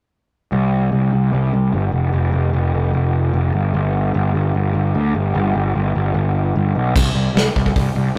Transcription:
0.52 C2
0.92 C2
1.13 C2
1.33 C2
1.53 C2
1.73 G1
1.92 F1
2.13 F1
2.32 F1
2.53 F1
2.74 F1
2.93 F1
3.33 F1
3.54 G1
3.74 G1
4.14 G1
4.34 G1
4.54 G1
4.74 G1
4.95 D2
5.15 G1
5.35 G1
5.55 G1
5.75 G1
5.95 G1
6.14 G1
6.56 G1
6.75 B1
6.96 C2, kick, crash
7.14 C2
7.34 C2, snare, open hi-hat
7.56 C2, kick
7.66 kick
7.76 C2, kick, open hi-hat
7.96 C2

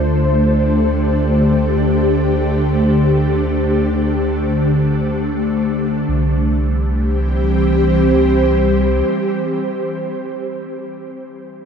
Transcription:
Already playing: D2 D3 A3 D4 G4 C5
6.08 C2 E3
6.23 G3
6.37 C4
6.51 G4
6.67 C5

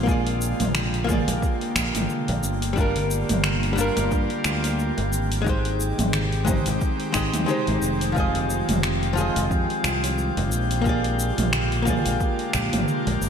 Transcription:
Already playing: A#1 G#3 F4 G4 G5
0.03 D3 A#3 F4, high conga
0.08 G#4 D5, kick, shaker
0.27 open hi-hat
0.41 shaker
0.60 A#1, mid tom, open hi-hat, high conga, shaker
0.75 finger snap, shaker
0.94 open hi-hat
1.04 A#3 F4
1.08 G#4 D5, kick, mid tom, high bongo, low conga, shaker
1.28 A#1, open hi-hat, high conga, shaker
1.42 kick, shaker
1.61 open hi-hat
1.76 A#1, finger snap, kick, high conga, shaker
1.95 G#1, mid tom, open hi-hat, high bongo, shaker
2.10 shaker
2.28 A#1, open hi-hat, high conga
2.43 G1, shaker
2.62 open hi-hat, shaker
2.73 G3 A#3 D4 F4
2.77 F4 A#4, kick, high conga, shaker
2.96 open hi-hat, low conga
3.11 shaker
3.29 G1, mid tom, open hi-hat, high conga, shaker
3.44 finger snap, shaker
3.63 open hi-hat
3.73 G3 D4
3.78 F4 A#4, high bongo, low conga, shaker
3.97 G1, open hi-hat, high conga, shaker
4.11 G2, kick, shaker
4.30 open hi-hat
4.44 D2, finger snap, high conga, shaker
4.64 open hi-hat, high bongo, shaker
4.79 shaker
4.97 G1, open hi-hat, high conga
5.12 G#1, shaker
5.32 open hi-hat, shaker
5.42 G#3 D#4
5.46 D#3 G#3 C4 G4 C5, kick, high conga, shaker
5.65 open hi-hat
5.80 shaker
5.98 G#1, mid tom, open hi-hat, high conga, shaker
6.13 finger snap, shaker
6.32 open hi-hat
6.45 G#3 D#4 G4 C5, kick, mid tom, high bongo, low conga, shaker
6.66 G#1, open hi-hat, high conga, shaker
6.81 kick, shaker
7.00 open hi-hat
7.12 G#1 G#3 D#4 G4 D#5, finger snap, kick, high conga, shaker
7.34 D#2, mid tom, open hi-hat, high bongo, shaker
7.46 G#3 D#4 G4, shaker
7.50 C5
7.67 G#1, open hi-hat, high conga
7.82 F1, shaker
8.01 open hi-hat, shaker
8.12 F3 F4, high conga
8.16 G#4 D#5, kick, shaker
8.35 open hi-hat, low conga
8.50 shaker
8.69 F1, mid tom, open hi-hat, high conga, shaker
8.83 finger snap, shaker
9.03 open hi-hat
9.13 F3 F4, low conga
9.17 G#4 D#5, high bongo, shaker
9.36 F1, open hi-hat, high conga, shaker
9.51 F2, kick, shaker
9.70 open hi-hat
9.84 C2, finger snap, high conga, shaker
10.04 open hi-hat, high bongo, shaker
10.18 shaker
10.37 F1, open hi-hat, high conga
10.52 A#1, shaker
10.71 open hi-hat, shaker
10.81 A#3 F4, high conga
10.86 D3 A#3 G#4 D5, kick, shaker
11.04 open hi-hat
11.19 shaker
11.38 A#1, mid tom, open hi-hat, high conga, shaker
11.53 finger snap, shaker
11.72 open hi-hat
11.82 A#3 F4, mid tom
11.87 G#4 D5, kick, high bongo, low conga, shaker
12.05 A#1, open hi-hat, high conga, shaker
12.20 kick, shaker
12.39 open hi-hat
12.53 A#1, finger snap, kick, high conga, shaker
12.73 G#1, mid tom, open hi-hat, high bongo, shaker
12.88 shaker
13.07 A#1, open hi-hat, high conga
13.21 G1, shaker

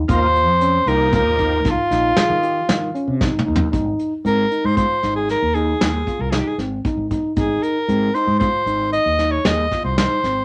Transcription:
0.08 D#2 F3 A#3 D#4 F4 C5, kick, closed hi-hat
0.35 closed hi-hat
0.47 F2
0.61 C#4, closed hi-hat
0.86 C2 F3 A#3 D#4 G4 A#4, closed hi-hat
1.12 F4 A#4, kick, snare, closed hi-hat
1.25 D#2
1.38 D#4, kick, closed hi-hat
1.65 C2, kick, snare, closed hi-hat
1.70 F4
1.91 A#1 D#4, snare, closed hi-hat
2.17 G#4, snare, closed hi-hat
2.29 D#3
2.43 G4, closed hi-hat
2.69 D#3 F4, snare, closed hi-hat
2.94 C#4, closed hi-hat
3.08 C3
3.21 D#4, kick, snare
3.39 mid tom
3.46 D#2 D#4
3.56 floor tom
3.72 G#1 D#4, kick, closed hi-hat
3.99 closed hi-hat
4.25 G#2 C4 A#4, closed hi-hat
4.51 D#4, closed hi-hat
4.64 G#2 C5
4.77 F4 C5, kick, closed hi-hat
5.03 G#1 D#4, snare, closed hi-hat
5.16 G#4
5.29 A#4, snare, closed hi-hat
5.42 D#2
5.55 D#4 G#4, closed hi-hat
5.81 D#2 G#4, snare, closed hi-hat
6.07 F4, kick, closed hi-hat
6.19 C2 A#4
6.30 D#4 G#4, snare, closed hi-hat
6.38 G4
6.47 G#4
6.58 G#1 C4, snare, closed hi-hat
6.85 D#4, kick, closed hi-hat
6.97 G#1
7.11 D#4, kick, closed hi-hat
7.36 G#1 D#4 G#4, kick, closed hi-hat
7.62 A#4, closed hi-hat
7.88 G#2 C4, closed hi-hat
8.14 D#4 C5, closed hi-hat
8.27 G#2
8.39 F4 C5, kick, closed hi-hat
8.66 G#1 D#4, closed hi-hat
8.93 D#5, closed hi-hat
9.06 D#2
9.19 D#4, snare, closed hi-hat
9.31 C#5
9.45 D#2 G#4 D#5, snare, closed hi-hat
9.71 F4, kick, snare, closed hi-hat
9.84 C2 C5
9.98 D#4 C5, snare, closed hi-hat
10.23 G#1 C4, snare, closed hi-hat

